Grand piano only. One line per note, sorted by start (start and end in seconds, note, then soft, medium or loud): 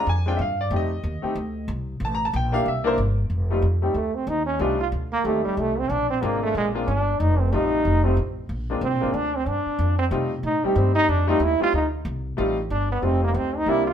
0.09 0.27 G#5 medium
0.26 0.37 G#3 medium
0.26 0.38 C4 medium
0.26 0.38 D4 medium
0.26 0.38 F4 medium
0.26 0.39 G5 medium
0.37 0.39 E5 medium
0.41 0.59 F5 medium
0.61 0.72 D5 medium
0.71 0.89 A3 medium
0.71 0.89 C4 medium
0.71 0.90 D#4 medium
0.71 0.90 G4 medium
0.76 1.67 D#5 medium
1.22 1.34 A3 medium
1.22 1.34 C4 medium
1.22 1.34 D#4 medium
1.22 1.34 G4 medium
2.05 2.13 A5 loud
2.15 2.23 A#5 medium
2.25 2.34 A5 loud
2.36 2.54 G5 loud
2.52 2.64 A#3 medium
2.52 2.64 D4 medium
2.52 2.64 E4 medium
2.52 2.64 G4 medium
2.52 2.65 F5 loud
2.68 2.86 E5 medium
2.84 2.96 A#3 medium
2.84 2.96 D4 medium
2.84 2.96 E4 medium
2.84 2.97 A#4 medium
2.84 2.94 C5 loud
3.50 3.61 G3 medium
3.50 3.61 A3 medium
3.50 3.62 C4 medium
3.50 3.62 D#4 medium
3.50 3.62 F4 medium
3.82 3.93 G3 medium
3.82 3.93 A3 medium
3.82 3.94 C4 medium
3.82 3.94 D#4 medium
3.82 3.94 G4 medium
4.59 4.77 G3 medium
4.59 4.78 A3 medium
4.59 4.78 C4 medium
4.59 4.78 D#4 medium
4.59 4.78 F4 medium
5.24 5.73 G3 medium
5.24 5.73 A3 medium
5.24 5.73 C4 medium
5.24 5.73 D#4 medium
5.24 5.74 G4 medium
6.21 6.70 G#3 medium
6.21 6.70 A#3 medium
6.21 6.71 C4 medium
6.21 6.71 D4 medium
6.21 6.71 F4 medium
6.73 6.85 G#3 medium
6.73 6.86 A#3 medium
6.73 6.86 C4 medium
6.73 6.86 D4 medium
6.73 6.86 F4 medium
7.52 8.00 G3 medium
7.52 8.01 A3 medium
7.52 8.01 C4 medium
7.52 8.01 D#4 medium
7.52 8.01 F4 medium
8.03 8.15 G3 medium
8.03 8.15 A3 medium
8.03 8.16 C4 medium
8.03 8.16 D#4 medium
8.03 8.16 F4 medium
8.70 8.81 G#3 medium
8.70 8.81 A#3 medium
8.70 8.81 C4 medium
8.70 8.81 D4 medium
8.70 8.82 F4 medium
9.01 9.12 G#3 medium
9.01 9.12 A#3 medium
9.01 9.12 C4 medium
9.01 9.13 D4 medium
9.01 9.13 F4 medium
10.11 10.29 G3 medium
10.11 10.29 A3 medium
10.11 10.29 C4 medium
10.11 10.30 D#4 medium
10.11 10.30 F4 medium
10.64 11.06 G3 medium
10.64 11.06 A3 medium
10.64 11.06 C4 medium
10.64 11.06 D#4 medium
10.64 11.07 G4 medium
11.27 11.39 G3 medium
11.27 11.39 A3 medium
11.27 11.39 C4 medium
11.27 11.39 D#4 medium
11.27 11.40 F4 medium
11.60 11.71 G3 medium
11.60 11.71 A3 medium
11.60 11.72 C4 medium
11.60 11.72 D#4 medium
11.60 11.72 F4 medium
12.37 12.55 G3 medium
12.37 12.55 A3 medium
12.37 12.55 C4 medium
12.37 12.56 D#4 medium
12.37 12.56 F4 medium
13.02 13.50 G3 medium
13.02 13.50 A3 medium
13.02 13.51 C4 medium
13.02 13.51 D#4 medium
13.02 13.51 F4 medium
13.67 13.85 G3 medium
13.67 13.85 A#3 medium
13.67 13.85 C4 medium
13.67 13.85 D4 medium
13.67 13.85 E4 medium